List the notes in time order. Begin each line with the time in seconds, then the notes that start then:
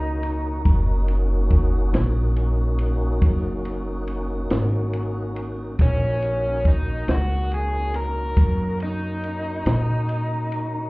Already playing: C#2 A#3 C#4 D#4 F#4
0.23 ride
0.65 F#1 A#3 C#4 D#4 F#4, kick, ride
1.08 ride
1.50 kick, ride
1.93 A#1, snare, ride
2.36 ride
2.79 ride
3.22 F#1, kick, ride
3.65 ride
4.07 ride
4.50 G#1, snare, ride
4.93 ride
5.36 ride
5.79 A#1 A#3 C#4 D#4 F#4, kick, ride
6.22 ride
6.65 D#4, kick, ride
7.08 C#2 F#4, snare, ride
7.52 G#4, ride
7.94 A#4, ride
8.37 F#2, kick, ride
8.80 D#4, ride
9.23 ride
9.66 A#2, snare, ride
10.09 ride
10.52 ride